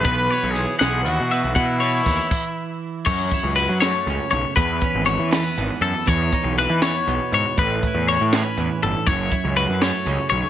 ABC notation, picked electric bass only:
X:1
M:6/8
L:1/16
Q:3/8=80
K:F#dor
V:1 name="Picked electric bass" clef=bass
B,,,2 z B,,,2 z B,,,2 D,, B,,2 B,,, | B,,4 D,, z6 z | F,,2 z C,,2 F,2 z C,, z B,,, z | E,,2 z G,,,2 E,2 z G,,, z F,, z |
E,,2 z B,,,2 E,2 z B,,, z G,, z | A,,,2 z E,,2 A,,2 z E,, z =G,,, z | F,,,2 z C,,2 F,,2 z C,, z B,,, z |]